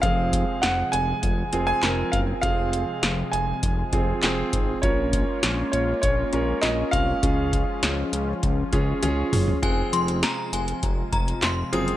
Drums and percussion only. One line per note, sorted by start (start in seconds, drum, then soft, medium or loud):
0.03 kick loud
0.03 closed hi-hat medium
0.33 kick medium
0.33 closed hi-hat medium
0.63 snare loud
0.63 closed hi-hat loud
0.93 closed hi-hat medium
1.23 kick loud
1.23 closed hi-hat medium
1.53 closed hi-hat medium
1.83 snare loud
1.83 clap loud
1.83 closed hi-hat medium
2.13 kick loud
2.13 closed hi-hat medium
2.43 kick loud
2.43 closed hi-hat medium
2.73 closed hi-hat medium
3.03 snare loud
3.03 closed hi-hat medium
3.33 closed hi-hat medium
3.63 kick loud
3.63 closed hi-hat medium
3.93 kick medium
3.93 closed hi-hat medium
4.23 snare loud
4.23 clap loud
4.23 closed hi-hat medium
4.53 kick loud
4.53 closed hi-hat medium
4.83 kick loud
4.83 closed hi-hat medium
5.13 kick medium
5.13 closed hi-hat medium
5.43 snare loud
5.43 closed hi-hat medium
5.73 closed hi-hat medium
6.03 kick loud
6.03 closed hi-hat medium
6.33 closed hi-hat medium
6.63 snare loud
6.63 clap loud
6.63 closed hi-hat medium
6.93 kick loud
6.93 closed hi-hat medium
7.23 kick loud
7.23 closed hi-hat medium
7.53 kick medium
7.53 closed hi-hat medium
7.83 snare loud
7.83 closed hi-hat medium
8.13 closed hi-hat medium
8.43 kick medium
8.43 closed hi-hat medium
8.73 kick medium
8.73 closed hi-hat medium
9.03 closed hi-hat medium
9.03 high tom medium
9.33 mid tom loud
9.33 open hi-hat medium
9.48 floor tom medium
9.63 kick loud
9.63 closed hi-hat medium
9.93 closed hi-hat medium
10.08 closed hi-hat medium
10.23 snare loud
10.23 closed hi-hat medium
10.53 closed hi-hat medium
10.68 closed hi-hat medium
10.83 kick medium
10.83 closed hi-hat medium
11.13 kick medium
11.13 closed hi-hat medium
11.28 closed hi-hat soft
11.42 snare loud
11.42 clap medium
11.42 closed hi-hat medium
11.73 closed hi-hat medium
11.88 closed hi-hat medium